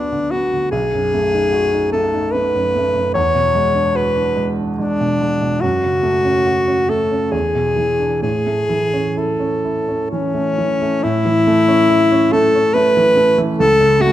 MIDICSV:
0, 0, Header, 1, 3, 480
1, 0, Start_track
1, 0, Key_signature, 3, "major"
1, 0, Tempo, 811908
1, 428, Time_signature, 3, 2, 24, 8
1, 2341, Tempo, 836820
1, 3781, Tempo, 879765
1, 4741, Tempo, 928793
1, 6181, Tempo, 851064
1, 7934, End_track
2, 0, Start_track
2, 0, Title_t, "Alto saxophone"
2, 0, Program_c, 0, 65
2, 0, Note_on_c, 0, 62, 63
2, 185, Note_on_c, 0, 66, 62
2, 194, Note_off_c, 0, 62, 0
2, 416, Note_off_c, 0, 66, 0
2, 420, Note_on_c, 0, 68, 73
2, 1123, Note_off_c, 0, 68, 0
2, 1134, Note_on_c, 0, 69, 65
2, 1369, Note_on_c, 0, 71, 73
2, 1378, Note_off_c, 0, 69, 0
2, 1852, Note_off_c, 0, 71, 0
2, 1856, Note_on_c, 0, 73, 77
2, 2341, Note_on_c, 0, 71, 66
2, 2349, Note_off_c, 0, 73, 0
2, 2659, Note_off_c, 0, 71, 0
2, 2811, Note_on_c, 0, 62, 70
2, 3288, Note_on_c, 0, 66, 79
2, 3297, Note_off_c, 0, 62, 0
2, 4013, Note_on_c, 0, 69, 68
2, 4021, Note_off_c, 0, 66, 0
2, 4241, Note_on_c, 0, 68, 74
2, 4250, Note_off_c, 0, 69, 0
2, 4734, Note_off_c, 0, 68, 0
2, 4737, Note_on_c, 0, 68, 76
2, 5233, Note_on_c, 0, 69, 54
2, 5240, Note_off_c, 0, 68, 0
2, 5707, Note_off_c, 0, 69, 0
2, 5710, Note_on_c, 0, 61, 72
2, 6190, Note_on_c, 0, 64, 99
2, 6199, Note_off_c, 0, 61, 0
2, 6919, Note_on_c, 0, 69, 85
2, 6928, Note_off_c, 0, 64, 0
2, 7153, Note_on_c, 0, 71, 94
2, 7162, Note_off_c, 0, 69, 0
2, 7533, Note_off_c, 0, 71, 0
2, 7629, Note_on_c, 0, 69, 98
2, 7872, Note_on_c, 0, 66, 88
2, 7880, Note_off_c, 0, 69, 0
2, 7934, Note_off_c, 0, 66, 0
2, 7934, End_track
3, 0, Start_track
3, 0, Title_t, "Grand piano"
3, 0, Program_c, 1, 0
3, 0, Control_c, 1, 64, 127
3, 0, Note_on_c, 1, 38, 38
3, 0, Note_on_c, 1, 50, 29
3, 0, Note_on_c, 1, 59, 33
3, 0, Note_on_c, 1, 62, 30
3, 0, Note_on_c, 1, 66, 35
3, 72, Note_off_c, 1, 50, 0
3, 72, Note_on_c, 1, 50, 31
3, 140, Note_off_c, 1, 59, 0
3, 190, Note_on_c, 1, 59, 30
3, 263, Note_off_c, 1, 50, 0
3, 311, Note_on_c, 1, 50, 34
3, 382, Note_off_c, 1, 59, 0
3, 413, Note_off_c, 1, 38, 0
3, 426, Note_on_c, 1, 35, 48
3, 430, Note_off_c, 1, 50, 0
3, 437, Control_c, 1, 64, 0
3, 439, Note_off_c, 1, 66, 0
3, 442, Note_off_c, 1, 62, 0
3, 520, Control_c, 1, 64, 127
3, 554, Note_on_c, 1, 42, 33
3, 674, Note_on_c, 1, 57, 37
3, 742, Note_off_c, 1, 42, 0
3, 792, Note_on_c, 1, 63, 36
3, 861, Note_off_c, 1, 57, 0
3, 902, Note_on_c, 1, 66, 39
3, 978, Note_off_c, 1, 63, 0
3, 1023, Note_on_c, 1, 63, 36
3, 1093, Note_off_c, 1, 66, 0
3, 1142, Note_on_c, 1, 57, 37
3, 1213, Note_off_c, 1, 63, 0
3, 1265, Note_on_c, 1, 63, 33
3, 1332, Note_off_c, 1, 57, 0
3, 1388, Note_on_c, 1, 57, 36
3, 1454, Note_off_c, 1, 63, 0
3, 1509, Note_on_c, 1, 42, 34
3, 1577, Note_off_c, 1, 57, 0
3, 1632, Note_on_c, 1, 57, 35
3, 1698, Note_off_c, 1, 42, 0
3, 1747, Note_on_c, 1, 42, 37
3, 1820, Note_off_c, 1, 57, 0
3, 1837, Note_off_c, 1, 35, 0
3, 1864, Note_on_c, 1, 40, 49
3, 1865, Note_off_c, 1, 42, 0
3, 1873, Control_c, 1, 64, 0
3, 1968, Control_c, 1, 64, 127
3, 1979, Note_on_c, 1, 47, 32
3, 2098, Note_on_c, 1, 56, 39
3, 2172, Note_off_c, 1, 47, 0
3, 2215, Note_on_c, 1, 62, 40
3, 2292, Note_off_c, 1, 56, 0
3, 2334, Note_on_c, 1, 66, 36
3, 2409, Note_off_c, 1, 62, 0
3, 2457, Note_on_c, 1, 62, 40
3, 2527, Note_off_c, 1, 66, 0
3, 2570, Note_on_c, 1, 56, 35
3, 2649, Note_off_c, 1, 62, 0
3, 2697, Note_on_c, 1, 62, 30
3, 2767, Note_off_c, 1, 56, 0
3, 2814, Note_on_c, 1, 56, 35
3, 2891, Note_off_c, 1, 62, 0
3, 2941, Note_on_c, 1, 47, 35
3, 3010, Note_off_c, 1, 56, 0
3, 3060, Note_on_c, 1, 56, 32
3, 3133, Note_off_c, 1, 47, 0
3, 3175, Note_on_c, 1, 47, 36
3, 3252, Note_off_c, 1, 56, 0
3, 3278, Note_off_c, 1, 40, 0
3, 3293, Note_on_c, 1, 42, 45
3, 3297, Note_off_c, 1, 47, 0
3, 3311, Control_c, 1, 64, 0
3, 3392, Control_c, 1, 64, 127
3, 3409, Note_on_c, 1, 49, 35
3, 3527, Note_on_c, 1, 57, 37
3, 3607, Note_off_c, 1, 49, 0
3, 3652, Note_on_c, 1, 61, 37
3, 3727, Note_off_c, 1, 57, 0
3, 3779, Note_on_c, 1, 66, 41
3, 3847, Note_off_c, 1, 61, 0
3, 3894, Note_on_c, 1, 61, 34
3, 3966, Note_off_c, 1, 66, 0
3, 4010, Note_on_c, 1, 57, 38
3, 4082, Note_off_c, 1, 61, 0
3, 4131, Note_on_c, 1, 61, 30
3, 4199, Note_off_c, 1, 57, 0
3, 4223, Note_off_c, 1, 42, 0
3, 4244, Note_on_c, 1, 40, 40
3, 4249, Note_off_c, 1, 61, 0
3, 4258, Control_c, 1, 64, 0
3, 4358, Control_c, 1, 64, 127
3, 4370, Note_on_c, 1, 47, 30
3, 4487, Note_on_c, 1, 52, 32
3, 4565, Note_off_c, 1, 47, 0
3, 4612, Note_on_c, 1, 62, 35
3, 4689, Note_off_c, 1, 52, 0
3, 4725, Note_off_c, 1, 40, 0
3, 4736, Note_on_c, 1, 45, 39
3, 4741, Note_off_c, 1, 62, 0
3, 4753, Control_c, 1, 64, 0
3, 4846, Control_c, 1, 64, 127
3, 4863, Note_on_c, 1, 57, 32
3, 4981, Note_on_c, 1, 52, 36
3, 5059, Note_off_c, 1, 57, 0
3, 5104, Note_on_c, 1, 61, 36
3, 5179, Note_off_c, 1, 52, 0
3, 5226, Note_on_c, 1, 64, 34
3, 5302, Note_off_c, 1, 61, 0
3, 5345, Note_on_c, 1, 61, 36
3, 5423, Note_off_c, 1, 64, 0
3, 5471, Note_on_c, 1, 64, 33
3, 5541, Note_off_c, 1, 61, 0
3, 5596, Note_on_c, 1, 61, 34
3, 5664, Note_off_c, 1, 64, 0
3, 5720, Note_on_c, 1, 52, 28
3, 5785, Note_off_c, 1, 61, 0
3, 5832, Note_on_c, 1, 57, 31
3, 5907, Note_off_c, 1, 52, 0
3, 5958, Note_on_c, 1, 52, 34
3, 6023, Note_off_c, 1, 57, 0
3, 6078, Note_on_c, 1, 57, 36
3, 6141, Note_off_c, 1, 52, 0
3, 6159, Note_off_c, 1, 45, 0
3, 6187, Note_off_c, 1, 57, 0
3, 6193, Control_c, 1, 64, 0
3, 6198, Note_on_c, 1, 45, 63
3, 6284, Control_c, 1, 64, 127
3, 6315, Note_on_c, 1, 52, 43
3, 6438, Note_on_c, 1, 57, 54
3, 6507, Note_off_c, 1, 52, 0
3, 6556, Note_on_c, 1, 61, 51
3, 6630, Note_off_c, 1, 57, 0
3, 6676, Note_on_c, 1, 64, 51
3, 6750, Note_off_c, 1, 61, 0
3, 6802, Note_on_c, 1, 61, 51
3, 6869, Note_off_c, 1, 64, 0
3, 6923, Note_on_c, 1, 57, 54
3, 6990, Note_off_c, 1, 61, 0
3, 7047, Note_on_c, 1, 61, 46
3, 7110, Note_off_c, 1, 57, 0
3, 7160, Note_on_c, 1, 57, 50
3, 7230, Note_off_c, 1, 61, 0
3, 7282, Note_on_c, 1, 52, 46
3, 7345, Note_off_c, 1, 57, 0
3, 7394, Note_on_c, 1, 57, 43
3, 7466, Note_off_c, 1, 52, 0
3, 7516, Note_on_c, 1, 52, 51
3, 7582, Note_off_c, 1, 57, 0
3, 7613, Note_off_c, 1, 45, 0
3, 7631, Note_off_c, 1, 52, 0
3, 7637, Control_c, 1, 64, 0
3, 7637, Note_on_c, 1, 37, 64
3, 7743, Control_c, 1, 64, 127
3, 7753, Note_on_c, 1, 49, 44
3, 7863, Note_on_c, 1, 57, 48
3, 7934, Note_off_c, 1, 37, 0
3, 7934, Note_off_c, 1, 49, 0
3, 7934, Note_off_c, 1, 57, 0
3, 7934, End_track
0, 0, End_of_file